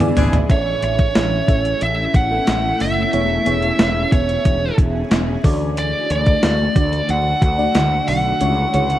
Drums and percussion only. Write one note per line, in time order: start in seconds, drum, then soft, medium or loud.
0.00 closed hi-hat soft
0.00 mid tom medium
0.17 closed hi-hat medium
0.17 floor tom loud
0.33 closed hi-hat medium
0.33 floor tom loud
0.50 kick loud
0.50 closed hi-hat medium
0.83 closed hi-hat medium
0.99 kick medium
0.99 closed hi-hat soft
1.15 snare loud
1.15 closed hi-hat medium
1.48 kick medium
1.48 closed hi-hat medium
1.65 closed hi-hat soft
1.81 closed hi-hat medium
2.14 kick medium
2.14 closed hi-hat medium
2.47 snare loud
2.47 closed hi-hat medium
2.80 open hi-hat medium
3.13 closed hi-hat medium
3.46 closed hi-hat medium
3.62 closed hi-hat soft
3.79 snare loud
3.79 closed hi-hat medium
4.12 kick medium
4.12 closed hi-hat medium
4.29 closed hi-hat medium
4.45 kick medium
4.45 closed hi-hat medium
4.78 kick loud
4.78 closed hi-hat medium
5.11 snare loud
5.11 closed hi-hat medium
5.44 kick loud
5.44 open hi-hat medium
5.77 closed hi-hat medium
6.10 closed hi-hat medium
6.26 kick medium
6.26 closed hi-hat soft
6.43 snare loud
6.43 closed hi-hat medium
6.76 kick loud
6.76 closed hi-hat medium
6.93 closed hi-hat soft
7.09 closed hi-hat medium
7.42 kick loud
7.42 closed hi-hat medium
7.75 snare loud
7.75 closed hi-hat medium
8.08 open hi-hat medium
8.41 closed hi-hat medium
8.74 closed hi-hat medium
8.90 closed hi-hat soft